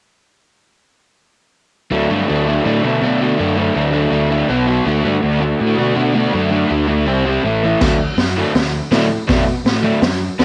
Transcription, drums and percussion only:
7.81 kick, snare, crash
8.18 snare, open hi-hat
8.55 snare, open hi-hat
8.92 snare, open hi-hat
9.29 kick, snare, open hi-hat
9.66 snare, open hi-hat
10.02 snare, open hi-hat
10.39 snare, open hi-hat

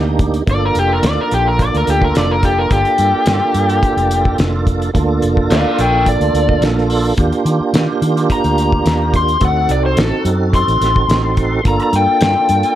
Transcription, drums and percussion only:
0.19 kick, closed hi-hat
0.34 closed hi-hat
0.47 kick, closed hi-hat
0.75 closed hi-hat
1.03 snare, closed hi-hat
1.31 closed hi-hat
1.59 kick, closed hi-hat
1.75 closed hi-hat
1.87 closed hi-hat
2.02 kick
2.15 snare, closed hi-hat
2.43 kick, closed hi-hat
2.71 kick, closed hi-hat
2.85 closed hi-hat
2.98 closed hi-hat
3.26 snare, closed hi-hat
3.54 closed hi-hat
3.70 closed hi-hat
3.83 kick, closed hi-hat
3.98 closed hi-hat
4.11 closed hi-hat
4.25 kick
4.38 snare, closed hi-hat
4.67 kick, closed hi-hat
4.82 closed hi-hat
4.95 kick, closed hi-hat
5.22 closed hi-hat
5.37 kick
5.51 snare, closed hi-hat
5.78 closed hi-hat
6.06 kick, closed hi-hat
6.21 closed hi-hat
6.35 closed hi-hat
6.49 kick
6.62 snare, closed hi-hat
6.78 snare
6.90 open hi-hat
7.18 kick, closed hi-hat
7.32 closed hi-hat
7.46 closed hi-hat
7.74 snare, closed hi-hat
8.02 closed hi-hat
8.17 closed hi-hat
8.30 kick, closed hi-hat
8.44 closed hi-hat
8.58 closed hi-hat
8.72 kick
8.86 snare, closed hi-hat
9.14 kick, closed hi-hat
9.28 closed hi-hat
9.41 kick, closed hi-hat
9.69 closed hi-hat
9.97 snare, closed hi-hat
10.25 closed hi-hat
10.53 kick, closed hi-hat
10.68 closed hi-hat
10.82 snare, closed hi-hat
10.96 kick
11.09 snare, closed hi-hat
11.37 kick, closed hi-hat
11.65 kick, closed hi-hat
11.80 closed hi-hat
11.93 closed hi-hat
12.21 snare, closed hi-hat
12.49 closed hi-hat
12.63 closed hi-hat

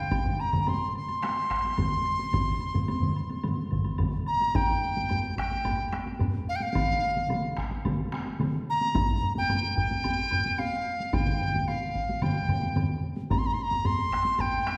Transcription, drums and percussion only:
0.11 taiko, taiko high, high woodblock
0.25 taiko low-mid, taiko mid
0.39 high woodblock
0.53 taiko low-mid, taiko mid, taiko high, high woodblock
0.67 taiko low-mid, taiko mid, taiko high, high woodblock
0.95 high woodblock
1.08 taiko high, high woodblock
1.22 taiko rim, taiko high, high woodblock
1.50 taiko rim, taiko, high woodblock
1.63 taiko high, high woodblock
1.77 taiko, taiko low-mid, taiko mid, taiko high, high woodblock
2.05 high woodblock
2.19 taiko high, high woodblock
2.33 taiko, taiko low-mid, taiko mid, taiko high, high woodblock
2.61 high woodblock
2.74 taiko low-mid, taiko mid, taiko high, high woodblock
2.88 taiko high, high woodblock
3.02 taiko low-mid, taiko mid
3.16 high woodblock
3.29 taiko high, high woodblock
3.43 taiko low-mid, taiko mid, taiko high, high woodblock
3.71 taiko, taiko low-mid, taiko mid, high woodblock
3.85 taiko high, high woodblock
3.98 taiko, taiko low-mid, taiko mid, taiko high, high woodblock
4.26 high woodblock
4.41 taiko high, high woodblock
4.54 taiko, taiko low-mid, taiko high, high woodblock
4.96 taiko low-mid, taiko high
5.09 taiko low-mid, taiko high, high woodblock
5.38 taiko rim, taiko
5.51 taiko high
5.65 taiko, taiko low-mid, taiko high, high woodblock
5.92 taiko rim, taiko high, high woodblock
6.06 taiko high
6.20 taiko low-mid, taiko high, high woodblock
6.61 taiko high
6.75 taiko, taiko mid, taiko high, high woodblock
7.16 taiko mid, taiko high
7.30 taiko mid, taiko high, high woodblock
7.57 taiko rim, taiko
7.72 taiko high
7.85 taiko, taiko mid, taiko high, high woodblock
8.12 taiko rim, taiko high, high woodblock
8.27 taiko high
8.40 taiko mid, taiko high, high woodblock
8.81 taiko high
8.95 taiko, taiko low-mid, taiko high, high woodblock
9.09 taiko low-mid
9.23 taiko low-mid
9.36 taiko low-mid, taiko high
9.50 taiko low-mid, taiko high, high woodblock
9.77 taiko, taiko low-mid
9.91 taiko high
10.04 taiko, taiko high, high woodblock
10.31 taiko low-mid, taiko high, high woodblock
10.46 taiko high
10.58 taiko high, high woodblock
11.00 taiko high
11.13 taiko, taiko low-mid, taiko mid, taiko high, high woodblock
11.27 taiko low-mid, taiko mid
11.40 taiko low-mid, taiko mid
11.54 taiko low-mid, taiko mid, taiko high
11.68 taiko high, high woodblock
11.95 taiko
12.09 taiko high
12.22 taiko low-mid, taiko mid, taiko high, high woodblock
12.49 taiko low-mid, taiko mid, taiko high, high woodblock
12.63 taiko high
12.76 taiko low-mid, taiko mid, taiko high, high woodblock
13.17 taiko high
13.30 taiko, taiko low-mid, taiko high, high woodblock
13.71 taiko low-mid, taiko high
13.85 taiko low-mid, taiko high, high woodblock
14.12 taiko rim, taiko
14.25 taiko high
14.38 taiko, taiko low-mid, taiko high, high woodblock
14.66 taiko rim, taiko high, high woodblock

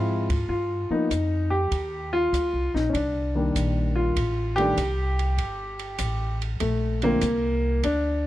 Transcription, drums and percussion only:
0.30 kick, ride
0.49 kick
1.11 kick, hi-hat pedal, ride
1.71 kick, ride
2.33 kick, hi-hat pedal, ride
2.76 snare
2.94 kick, ride
3.55 kick, hi-hat pedal, ride
4.16 kick, ride
4.58 ride
4.77 kick, hi-hat pedal, ride
5.19 ride
5.38 kick, ride
5.79 ride
5.98 kick, hi-hat pedal, ride
6.42 ride
6.60 kick, ride
7.02 ride
7.21 kick, hi-hat pedal, ride
7.83 kick, ride

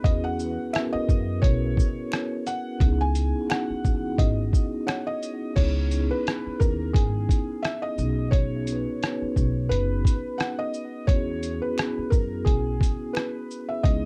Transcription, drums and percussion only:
0.04 kick, closed hi-hat
0.39 shaker
0.74 finger snap, cross-stick, closed hi-hat
1.09 kick, shaker
1.43 kick, closed hi-hat
1.77 kick, shaker
2.12 finger snap, cross-stick, closed hi-hat
2.47 closed hi-hat, shaker
2.80 kick, closed hi-hat
3.15 closed hi-hat, shaker
3.50 finger snap, cross-stick, closed hi-hat
3.85 kick, shaker
4.18 kick, closed hi-hat
4.53 kick, shaker
4.88 finger snap, cross-stick, closed hi-hat
5.23 closed hi-hat, shaker
5.56 kick, closed hi-hat, crash
5.91 closed hi-hat, shaker
6.27 cross-stick, closed hi-hat
6.61 kick, shaker
6.95 kick, closed hi-hat
7.29 kick, closed hi-hat, shaker
7.65 cross-stick, closed hi-hat
7.98 shaker
8.32 kick, closed hi-hat
8.67 closed hi-hat, shaker
9.03 cross-stick, closed hi-hat
9.36 kick, shaker
9.72 closed hi-hat
10.05 kick, closed hi-hat, shaker
10.40 cross-stick, closed hi-hat
10.74 shaker
11.08 kick, closed hi-hat
11.43 closed hi-hat, shaker
11.78 finger snap, cross-stick, closed hi-hat
12.12 kick, shaker
12.46 kick, closed hi-hat
12.81 kick, closed hi-hat, shaker
13.15 finger snap, cross-stick, closed hi-hat
13.51 shaker
13.84 kick, closed hi-hat

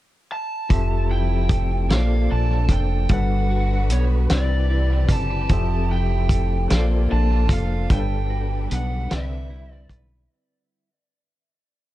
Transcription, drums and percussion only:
0.70 kick, closed hi-hat
1.49 kick, closed hi-hat
1.90 snare, closed hi-hat
2.69 kick, closed hi-hat
3.09 kick, closed hi-hat
3.90 closed hi-hat
4.30 snare, closed hi-hat
5.09 kick, closed hi-hat
5.49 kick, closed hi-hat
6.29 kick, closed hi-hat
6.70 snare, closed hi-hat
7.49 kick, closed hi-hat
7.90 kick, closed hi-hat
8.71 closed hi-hat
9.11 snare, closed hi-hat
9.89 kick, closed hi-hat

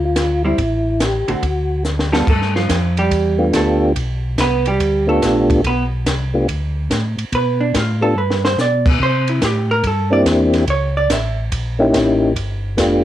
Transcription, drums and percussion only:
0.16 snare, hi-hat pedal, ride
0.58 kick, ride
1.00 snare, hi-hat pedal, ride
1.28 ride
1.43 kick, ride
1.85 snare, hi-hat pedal
1.99 snare
2.13 snare
2.27 kick, crash
2.41 snare
2.56 snare
2.69 kick, snare, hi-hat pedal, ride
2.97 ride
3.11 kick, ride
3.53 kick, snare, hi-hat pedal, ride
3.96 kick, ride
4.38 kick, snare, hi-hat pedal, ride
4.66 ride
4.80 kick, ride
5.22 kick, snare, hi-hat pedal, ride
5.50 kick, ride
5.64 kick, ride
6.06 kick, snare, hi-hat pedal, ride
6.48 kick, ride
6.90 kick, snare, hi-hat pedal, ride
7.18 ride
7.32 kick, ride
7.74 kick, snare, hi-hat pedal, ride
8.30 snare
8.45 snare
8.59 snare, hi-hat pedal
8.86 kick, crash
9.00 kick
9.28 ride
9.42 kick, snare, hi-hat pedal, ride
9.84 kick, ride
10.26 kick, snare, hi-hat pedal, ride
10.54 snare, ride
10.68 kick, ride
11.10 kick, snare, hi-hat pedal, ride
11.52 kick, ride
11.94 kick, snare, hi-hat pedal, ride
12.36 kick, ride
12.78 kick, snare, hi-hat pedal, ride

